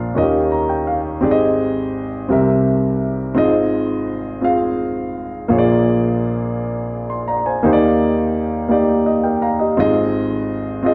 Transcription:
Already playing: A#1 A#2 D4 F4 A#4 F5
0.15 D#2 D#3 C#4 F4 A#4 D#5
0.22 G4
0.52 A#5
0.69 G5
0.87 F5
1.21 G#1 G#2 C4 G4 G#4 D5
1.31 D#5
2.29 C2 C3 C4 G4 A#4 E5
3.34 G#1 G#2 C4 F4 G#4 D#5
4.41 C4 F4 G#4 F5
5.48 A#1 A#2 A#3 F4 G#4 C#5
5.58 D5
7.10 C6
7.28 D5 A#5
7.46 C5 G#5
7.63 D#2 D#3 A#3 D#4 G4 C5
7.73 D5
8.68 A#3 D#4 G4 D5
9.06 D#5
9.23 A#4 G5
9.42 F5 A#5
9.59 G4 D#5
9.77 G#1 G#2 C4 F4 G#4 D#5
10.83 C4 F4 G#4 D#5

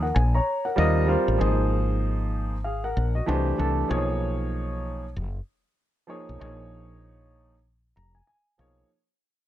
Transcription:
Already playing: D#2
0.02 A#4 F#5
0.15 A#1 G#5
0.35 C#5 A#5
0.65 A#4 F#5
0.76 D#2 G3 C4 F4 A#4 D#5
1.07 G3 C4 F4 A#4 C5
1.28 A1
1.38 G#1 F3 A#3 D#4 G#4 C5
2.64 G#4 F5
2.84 A#4 F#5
2.97 A#1
3.15 F#4 D#5
3.26 C2 E3 A3 D4 G4 C5
3.58 C2 E3 A3 D4 G4 A4
3.88 B1 F3 A#3 D#4 G#4 C#5
5.16 F#1
6.07 F3 A#3 D#4 G#4 C#5
6.29 B1
6.39 A#1 F3 A#3 D#4 G#4 C#5
7.96 F1 A#5
8.15 G#5
8.27 G#5
8.58 B1 F3 A#3 D#4 G#4 C#5 F5

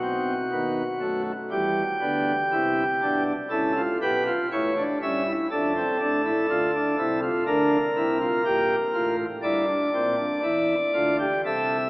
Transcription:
Already playing: B1 B2 F#4
0.02 C4
0.51 D#2 D#3 B3
1.00 F#2 F#3 A3
1.51 E2 E3 G3 G4
2.01 D2 D3 B3
2.52 C2 C3 E4
3.02 B1 B2 D4
3.50 C#2 C#3 E4 A4
3.76 F4
4.01 B1 B2 G4 B4
4.27 F4
4.51 A1 A2 E4 C#5
4.78 D4
5.02 G1 G2 C#4 E5
5.27 E4
5.51 F1 F2 D4 A4
5.76 C4
6.01 A1 A2 D4
6.25 E4
6.49 D2 D3 F4
6.75 D4
6.98 C2 C3 E4
7.22 F4
7.46 D2 D3 D4 A#4
7.96 C2 C3 E4
8.21 F4
8.45 A#1 A#2 G4
8.94 A1 A2 F4
9.43 G1 G2 E4 D5
9.68 D4
9.93 A#1 A#2 C4
10.17 D4
10.42 E2 E3 E4
10.94 D2 D3 F4
11.19 G4
11.45 C2 C3 A4 E5

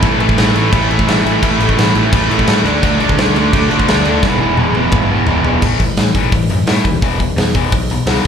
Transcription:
0.02 A1 A2 E3 A3, kick, crash
0.19 A1 A2 E3 A3, crash
0.29 kick
0.36 A1 A2 E3 A3, snare, crash
0.54 A1 A2 E3 A3, crash
0.71 A1 A2 E3 A3, kick, crash
0.89 A1 A2 E3 A3, crash
0.99 kick
1.07 A1 A2 E3 A3, snare, crash
1.24 A1 A2 E3 A3, crash
1.42 A1 A2 E3 A3, kick, crash
1.60 A1 A2 E3 A3, crash
1.69 kick
1.77 A1 A2 E3 A3, snare, crash
1.95 A1 A2 E3 A3, crash
2.12 A1 A2 E3 A3, kick, crash
2.30 A1 A2 E3 A3, crash
2.39 kick
2.47 A1 A2 E3 A3, snare, crash
2.64 D2 D3 A3 D4, crash
2.81 D2 D3 A3 D4, kick, crash
3.00 D2 D3 A3 D4, crash
3.09 kick
3.17 D2 D3 A3 D4, snare, crash
3.35 D2 D3 A3 D4, crash
3.52 D2 D3 A3 D4, kick, crash
3.70 D2 D3 A3 D4, crash
3.80 kick
3.88 D2 D3 A3 D4, snare, crash
4.05 D2 D3 A3 D4, crash
4.23 E1 E2 B2 E3, kick, snare
4.40 E1 E2 B2 E3
4.57 E1 E2 B2 E3, high tom
4.75 E1 E2 B2 E3, high tom
4.92 E1 E2 B2 E3, kick, mid tom
5.10 E1 E2 B2 E3
5.27 E1 E2 B2 E3, floor tom
5.45 E2 B2 E3, floor tom
5.62 A1 A2 E3 A3, kick, crash
5.80 A1 A2 E3, kick, open hi-hat
5.97 A2 E3, snare, open hi-hat
6.15 A1 A2 E3 A3, kick, open hi-hat
6.32 A1 A2 E3, kick, open hi-hat
6.49 F#2 A2 E3, open hi-hat
6.66 A2 E3 A3, snare, open hi-hat
6.84 D#2 A2 E3, kick, open hi-hat
7.01 E1 E2 B2 E3, kick, open hi-hat
7.19 E2 B2, kick, open hi-hat
7.36 E2 B2, snare, open hi-hat
7.55 E2 B2 E3, kick, open hi-hat
7.72 B1 E2 B2, kick, open hi-hat
7.90 E2 B2, open hi-hat
8.06 C#2 E2 B2 E3, snare, open hi-hat

